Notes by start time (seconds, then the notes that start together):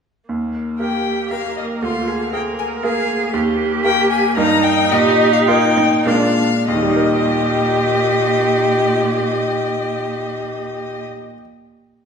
0.29 D#2 A#3
0.79 A#3 G4 A#4 G5
1.31 A#3 G4 A#4 F5
1.57 D#5
1.82 D2 F4 F5
2.07 G#4
2.33 A#3 G#4 A#4 G5
2.59 G#5
2.83 A#3 G#4 A#4 F5
3.33 D#2 A#3 G4
3.84 A#3 G4 A#4 G5
4.11 G#5
4.37 G2 A#3 D#4 A#4 A#5
4.63 G5
4.92 A#2 G4 D#5
5.33 F5
5.47 A#3 D#4 F4 A#4 G5
5.77 D#4
6.06 A#2 G#3 D4 A#4 F5
6.68 D#2 A#2 G4 D#5
6.75 D#3
6.83 G3
6.89 D#4
6.96 A#4
7.04 D#5